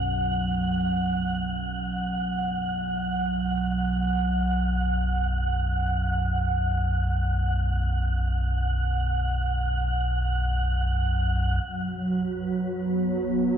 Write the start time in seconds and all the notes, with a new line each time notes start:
Already playing: B1 F#2 F#5
11.63 B1 F#2 F#3 B4
12.73 B3